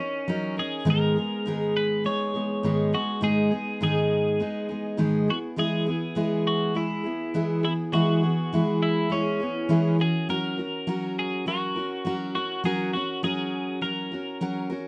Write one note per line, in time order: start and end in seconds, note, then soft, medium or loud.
0.00 0.55 C#4 medium
0.00 0.27 C#4 soft
0.00 0.28 D#4 soft
0.00 0.28 A#4 soft
0.28 0.57 F#3 medium
0.28 0.58 C#4 medium
0.28 0.57 D#4 medium
0.28 0.56 A#4 medium
0.57 0.86 C#4 soft
0.57 0.85 D#4 soft
0.57 0.89 G#4 medium
0.57 0.87 A#4 soft
0.85 1.16 G#2 medium
0.85 1.16 D#3 medium
0.85 1.16 G#3 medium
0.85 1.17 B3 medium
0.85 1.16 D#4 medium
0.85 1.15 G#4 medium
0.90 1.76 A#4 loud
1.16 1.46 G#3 soft
1.16 1.46 B3 soft
1.16 1.46 D#4 soft
1.16 1.46 G#4 soft
1.46 2.05 G#2 medium
1.46 2.05 D#3 medium
1.46 2.04 G#3 medium
1.46 2.05 B3 medium
1.46 2.05 D#4 medium
1.46 2.07 G#4 medium
1.77 2.06 B4 medium
2.04 2.34 G#3 soft
2.04 2.35 B3 medium
2.04 2.34 D#4 medium
2.04 2.33 G#4 medium
2.04 2.94 C#5 loud
2.34 2.63 G#3 soft
2.34 2.64 B3 soft
2.34 2.64 D#4 soft
2.34 2.64 G#4 soft
2.63 2.93 G#2 medium
2.63 2.94 D#3 medium
2.63 2.94 G#3 medium
2.63 2.93 B3 medium
2.63 2.93 D#4 medium
2.63 2.92 G#4 medium
2.93 3.21 G#3 soft
2.93 3.21 B3 soft
2.93 3.22 D#4 medium
2.93 3.23 F#4 medium
2.93 3.22 G#4 soft
3.21 3.51 G#2 medium
3.21 3.52 D#3 medium
3.21 3.52 G#3 medium
3.21 3.51 B3 medium
3.21 3.50 D#4 medium
3.21 3.49 G#4 medium
3.21 3.82 G#4 medium
3.50 3.81 G#3 soft
3.50 3.81 B3 soft
3.50 3.81 D#4 soft
3.50 3.81 G#4 soft
3.81 4.40 G#2 medium
3.81 4.40 D#3 medium
3.81 4.39 G#3 medium
3.81 4.40 B3 medium
3.81 4.40 D#4 medium
3.81 4.41 G#4 medium
3.81 5.30 G#4 medium
4.40 4.70 G#3 medium
4.40 4.69 B3 medium
4.40 4.68 D#4 medium
4.40 4.67 G#4 medium
4.69 4.97 G#3 soft
4.69 4.97 B3 soft
4.69 4.98 D#4 soft
4.69 4.98 G#4 medium
4.97 5.28 G#2 medium
4.97 5.28 D#3 medium
4.97 5.28 G#3 medium
4.97 5.28 B3 medium
4.97 5.29 D#4 medium
4.97 5.27 G#4 medium
5.28 5.57 B3 soft
5.28 5.57 E4 soft
5.28 5.38 F#4 medium
5.28 5.57 G#4 soft
5.56 5.87 E3 medium
5.56 5.87 G#3 medium
5.56 5.88 B3 medium
5.56 5.87 E4 medium
5.56 5.85 G#4 medium
5.56 6.47 G#4 medium
5.86 6.15 B3 soft
5.86 6.16 E4 soft
5.86 6.16 G#4 soft
6.15 6.75 E3 medium
6.15 6.73 G#3 medium
6.15 6.74 B3 medium
6.15 6.74 E4 medium
6.15 6.76 G#4 medium
6.47 6.77 F#4 medium
6.74 7.05 G#3 medium
6.74 7.05 B3 soft
6.74 7.04 E4 medium
6.74 7.63 E4 medium
6.74 7.03 G#4 medium
7.04 7.34 B3 soft
7.04 7.34 E4 soft
7.04 7.34 G#4 soft
7.34 7.64 E3 medium
7.34 7.64 G#3 medium
7.34 7.64 B3 medium
7.34 7.64 E4 medium
7.34 7.62 G#4 medium
7.63 7.92 B3 soft
7.63 7.73 E4 medium
7.63 7.93 E4 soft
7.63 7.93 G#4 medium
7.93 8.23 E3 medium
7.93 8.23 G#3 medium
7.93 8.23 B3 medium
7.93 8.23 E4 medium
7.93 8.82 F#4 medium
7.93 8.22 G#4 medium
8.23 8.52 B3 soft
8.23 8.53 E4 soft
8.23 8.53 G#4 medium
8.53 9.12 E3 medium
8.53 9.09 G#3 medium
8.53 9.10 B3 medium
8.53 9.11 E4 medium
8.53 9.11 G#4 medium
8.83 9.13 E4 medium
9.10 9.40 G#3 medium
9.10 9.41 B3 medium
9.10 9.96 C#4 medium
9.10 9.40 E4 medium
9.10 9.39 G#4 medium
9.40 9.69 B3 soft
9.40 9.69 E4 soft
9.40 9.69 G#4 soft
9.69 9.99 E3 medium
9.69 9.99 G#3 medium
9.69 10.00 B3 medium
9.69 10.00 E4 medium
9.69 9.98 G#4 medium
9.99 10.29 C#4 soft
9.99 10.29 F#4 soft
9.99 10.30 G#4 medium
9.99 10.29 A#4 medium
10.29 10.59 F#3 medium
10.29 10.59 C#4 medium
10.29 10.58 F#4 medium
10.29 11.19 A#4 loud
10.29 10.57 A#4 medium
10.58 10.86 C#4 soft
10.58 10.87 F#4 soft
10.58 10.88 A#4 soft
10.87 11.46 F#3 medium
10.87 11.47 C#4 medium
10.87 11.47 F#4 medium
10.87 11.48 A#4 medium
11.19 11.47 G#4 medium
11.46 11.76 F#3 medium
11.46 11.76 C#4 medium
11.46 11.76 F#4 medium
11.46 12.34 F#4 medium
11.46 11.75 A#4 medium
11.76 12.05 C#4 soft
11.76 12.05 F#4 soft
11.76 12.06 A#4 soft
12.05 12.35 F#3 medium
12.05 12.35 C#4 medium
12.05 12.35 F#4 medium
12.05 12.34 A#4 medium
12.35 12.64 C#4 soft
12.35 12.65 F#4 medium
12.35 12.64 F#4 medium
12.35 12.65 A#4 soft
12.64 12.94 F#3 medium
12.64 12.94 C#4 medium
12.64 12.94 F#4 medium
12.64 12.93 G#4 medium
12.64 12.92 A#4 medium
12.93 13.23 C#4 soft
12.93 13.24 F#4 medium
12.93 13.23 F#4 soft
13.23 13.81 F#3 medium
13.23 13.83 C#4 medium
13.23 13.83 F#4 medium
13.23 13.79 G#4 medium
13.23 13.84 A#4 medium
13.81 14.11 F#3 medium
13.81 14.12 C#4 medium
13.81 14.12 F#4 medium
13.81 14.67 A#4 medium
13.81 14.10 A#4 medium
14.12 14.40 C#4 soft
14.12 14.41 F#4 soft
14.12 14.41 A#4 soft
14.41 14.70 F#3 medium
14.41 14.71 C#4 medium
14.41 14.70 F#4 medium
14.41 14.68 A#4 medium
14.70 14.88 C#4 medium
14.70 14.88 F#4 medium
14.70 14.88 A#4 medium